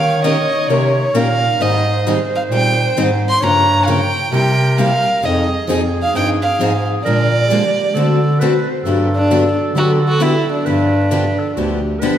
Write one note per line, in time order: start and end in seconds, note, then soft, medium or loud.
0.00 0.51 D#3 medium
0.00 1.11 C#5 loud
0.00 0.24 F5 loud
0.24 0.36 D#3 medium
0.24 0.36 A#3 medium
0.24 0.36 C#4 medium
0.24 0.36 G4 medium
0.24 0.36 A#4 medium
0.24 0.71 D#5 medium
0.68 1.07 C3 medium
0.68 0.91 D#3 medium
0.68 0.92 A#3 medium
0.68 0.91 C#4 medium
0.68 0.92 G4 medium
0.68 0.92 A#4 medium
0.68 1.18 C#5 medium
1.13 1.53 A#2 medium
1.13 1.26 D#3 medium
1.13 1.26 A#3 medium
1.13 1.27 C#4 medium
1.13 1.27 G4 medium
1.13 1.62 A#4 medium
1.13 1.27 A#4 medium
1.13 1.63 F5 medium
1.59 2.15 G#2 medium
1.59 1.82 D#3 medium
1.59 1.82 G3 medium
1.59 1.83 C4 medium
1.59 1.83 D#4 medium
1.59 1.83 G#4 medium
1.59 3.42 C5 loud
1.59 2.07 D#5 medium
2.07 2.18 D#3 medium
2.07 2.18 G3 medium
2.07 2.18 C4 medium
2.07 2.18 D#4 medium
2.07 2.19 G#4 loud
2.35 2.43 F5 medium
2.50 2.89 A#2 medium
2.50 2.73 D#3 medium
2.50 2.74 G3 medium
2.50 2.74 C4 medium
2.50 2.74 D#4 medium
2.50 2.74 G#4 medium
2.50 2.95 G5 medium
2.95 3.35 G#2 medium
2.95 3.08 D#3 medium
2.95 3.09 G3 medium
2.95 3.09 C4 loud
2.95 3.09 D#4 medium
2.95 3.09 G#4 medium
3.29 3.43 C6 loud
3.41 4.14 G2 medium
3.41 3.64 C#3 medium
3.41 3.64 F3 medium
3.41 3.64 A#3 medium
3.41 3.64 F4 medium
3.41 3.64 G4 medium
3.41 4.11 C#5 loud
3.46 3.86 A#5 loud
3.85 3.99 C#3 medium
3.85 3.99 F3 medium
3.85 3.99 A#3 medium
3.85 3.99 F4 medium
3.85 3.99 G4 medium
3.85 3.91 F5 medium
3.90 4.34 G5 medium
4.32 5.05 C3 medium
4.32 4.55 C3 medium
4.32 4.55 G3 medium
4.32 4.56 A#3 medium
4.32 4.55 E4 medium
4.32 4.55 G4 medium
4.32 5.19 A#4 medium
4.32 4.76 G5 medium
4.78 4.90 C3 medium
4.78 4.90 G3 medium
4.78 4.90 A#3 medium
4.78 4.90 E4 medium
4.78 4.91 G4 loud
4.78 5.27 F5 loud
5.22 5.59 F2 loud
5.22 5.45 F3 medium
5.22 5.45 C4 medium
5.22 5.45 D#4 medium
5.22 7.01 G#4 loud
5.22 5.45 G#4 medium
5.22 5.70 D#5 medium
5.68 6.07 F2 medium
5.68 5.81 F3 medium
5.68 5.81 C4 medium
5.68 5.81 D#4 medium
5.68 5.81 G#4 loud
6.02 6.16 F5 medium
6.13 6.52 G2 medium
6.13 6.36 F3 medium
6.13 6.37 C4 medium
6.13 6.37 D#4 medium
6.13 6.37 G#4 medium
6.13 6.29 G5 medium
6.43 6.85 F5 medium
6.59 6.98 G#2 medium
6.59 6.72 F3 medium
6.59 6.72 C4 medium
6.59 6.72 D#4 loud
6.59 6.72 G#4 loud
7.04 7.60 A#2 medium
7.04 7.27 D3 medium
7.04 7.27 F3 medium
7.04 7.27 G#3 medium
7.04 7.28 A#3 medium
7.04 7.27 D4 medium
7.04 7.27 F4 medium
7.04 7.28 G#4 medium
7.04 7.50 A#4 loud
7.04 7.28 A#4 medium
7.04 8.36 D5 loud
7.48 7.62 D3 medium
7.48 7.62 F3 medium
7.48 7.62 G#3 loud
7.48 7.62 A#3 medium
7.48 7.62 D4 medium
7.48 7.63 F4 medium
7.48 7.95 G4 medium
7.48 7.62 G#4 loud
7.48 7.62 A#4 medium
7.94 8.67 D3 medium
7.94 8.17 D3 medium
7.94 8.18 A3 medium
7.94 8.18 C4 medium
7.94 8.18 F#4 medium
7.94 8.41 A4 loud
7.94 8.18 A4 medium
8.40 8.52 D3 medium
8.40 8.53 A3 medium
8.40 8.53 C4 medium
8.40 8.53 F#4 medium
8.40 8.53 A4 medium
8.40 8.71 B4 medium
8.70 8.83 C5 medium
8.83 9.58 G2 medium
8.83 9.07 D3 medium
8.83 9.08 F#3 medium
8.83 9.08 B3 medium
8.83 9.08 D4 medium
8.83 10.67 A4 loud
8.87 9.08 G4 medium
9.16 9.57 D4 medium
9.31 9.43 D3 medium
9.31 9.43 F#3 medium
9.31 9.43 B3 medium
9.31 9.43 D4 loud
9.31 9.43 G4 medium
9.74 10.48 D3 medium
9.74 9.98 D3 medium
9.74 9.98 F#3 medium
9.74 9.98 B3 medium
9.74 9.98 D4 medium
9.74 9.91 F#4 medium
9.74 9.99 G4 medium
10.08 10.24 F#4 medium
10.20 10.32 D3 medium
10.20 10.32 F#3 medium
10.20 10.32 B3 medium
10.20 10.33 D4 medium
10.20 10.51 E4 medium
10.20 10.33 G4 loud
10.53 11.83 D4 medium
10.66 11.38 G2 medium
10.66 10.88 D3 medium
10.66 10.88 F3 medium
10.66 10.89 B3 medium
10.66 10.88 D4 medium
10.66 10.88 G4 medium
10.66 11.10 B4 loud
11.11 11.23 D3 medium
11.11 11.23 F3 medium
11.11 11.23 B3 medium
11.11 11.23 D4 medium
11.11 11.23 G4 medium
11.11 11.41 B4 medium
11.39 11.54 A4 medium
11.55 12.11 D2 medium
11.55 11.79 D3 medium
11.55 11.79 F3 medium
11.55 11.79 B3 medium
11.55 11.79 D4 medium
11.55 12.01 G4 medium
11.55 11.79 G4 medium
11.99 12.14 D3 medium
11.99 12.14 F3 medium
11.99 12.14 B3 medium
11.99 12.14 D4 loud
11.99 12.14 G4 loud
11.99 12.18 B4 medium